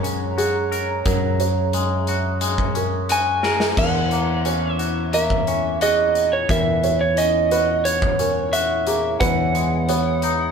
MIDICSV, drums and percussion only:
0, 0, Header, 1, 2, 480
1, 0, Start_track
1, 0, Tempo, 679502
1, 745, Time_signature, 4, 2, 24, 8
1, 7427, End_track
2, 0, Start_track
2, 0, Title_t, "Drums"
2, 31, Note_on_c, 9, 42, 49
2, 101, Note_off_c, 9, 42, 0
2, 272, Note_on_c, 9, 42, 54
2, 342, Note_off_c, 9, 42, 0
2, 511, Note_on_c, 9, 42, 41
2, 582, Note_off_c, 9, 42, 0
2, 745, Note_on_c, 9, 42, 63
2, 747, Note_on_c, 9, 36, 88
2, 816, Note_off_c, 9, 42, 0
2, 818, Note_off_c, 9, 36, 0
2, 987, Note_on_c, 9, 42, 47
2, 1058, Note_off_c, 9, 42, 0
2, 1225, Note_on_c, 9, 42, 62
2, 1295, Note_off_c, 9, 42, 0
2, 1464, Note_on_c, 9, 42, 43
2, 1534, Note_off_c, 9, 42, 0
2, 1703, Note_on_c, 9, 42, 66
2, 1773, Note_off_c, 9, 42, 0
2, 1824, Note_on_c, 9, 36, 61
2, 1895, Note_off_c, 9, 36, 0
2, 1943, Note_on_c, 9, 42, 50
2, 2014, Note_off_c, 9, 42, 0
2, 2185, Note_on_c, 9, 42, 69
2, 2256, Note_off_c, 9, 42, 0
2, 2424, Note_on_c, 9, 38, 38
2, 2494, Note_off_c, 9, 38, 0
2, 2544, Note_on_c, 9, 38, 57
2, 2615, Note_off_c, 9, 38, 0
2, 2665, Note_on_c, 9, 36, 94
2, 2665, Note_on_c, 9, 49, 74
2, 2735, Note_off_c, 9, 49, 0
2, 2736, Note_off_c, 9, 36, 0
2, 2904, Note_on_c, 9, 42, 43
2, 2975, Note_off_c, 9, 42, 0
2, 3144, Note_on_c, 9, 42, 54
2, 3215, Note_off_c, 9, 42, 0
2, 3386, Note_on_c, 9, 42, 44
2, 3456, Note_off_c, 9, 42, 0
2, 3626, Note_on_c, 9, 42, 63
2, 3696, Note_off_c, 9, 42, 0
2, 3745, Note_on_c, 9, 36, 66
2, 3816, Note_off_c, 9, 36, 0
2, 3866, Note_on_c, 9, 42, 45
2, 3937, Note_off_c, 9, 42, 0
2, 4106, Note_on_c, 9, 42, 61
2, 4176, Note_off_c, 9, 42, 0
2, 4347, Note_on_c, 9, 42, 40
2, 4417, Note_off_c, 9, 42, 0
2, 4586, Note_on_c, 9, 36, 90
2, 4587, Note_on_c, 9, 42, 64
2, 4657, Note_off_c, 9, 36, 0
2, 4657, Note_off_c, 9, 42, 0
2, 4828, Note_on_c, 9, 42, 47
2, 4899, Note_off_c, 9, 42, 0
2, 5066, Note_on_c, 9, 42, 63
2, 5137, Note_off_c, 9, 42, 0
2, 5308, Note_on_c, 9, 42, 47
2, 5378, Note_off_c, 9, 42, 0
2, 5547, Note_on_c, 9, 42, 68
2, 5618, Note_off_c, 9, 42, 0
2, 5667, Note_on_c, 9, 36, 72
2, 5737, Note_off_c, 9, 36, 0
2, 5786, Note_on_c, 9, 42, 53
2, 5857, Note_off_c, 9, 42, 0
2, 6025, Note_on_c, 9, 42, 66
2, 6096, Note_off_c, 9, 42, 0
2, 6263, Note_on_c, 9, 42, 51
2, 6334, Note_off_c, 9, 42, 0
2, 6503, Note_on_c, 9, 42, 77
2, 6504, Note_on_c, 9, 36, 94
2, 6573, Note_off_c, 9, 42, 0
2, 6574, Note_off_c, 9, 36, 0
2, 6745, Note_on_c, 9, 42, 48
2, 6816, Note_off_c, 9, 42, 0
2, 6984, Note_on_c, 9, 42, 59
2, 7054, Note_off_c, 9, 42, 0
2, 7221, Note_on_c, 9, 42, 50
2, 7292, Note_off_c, 9, 42, 0
2, 7427, End_track
0, 0, End_of_file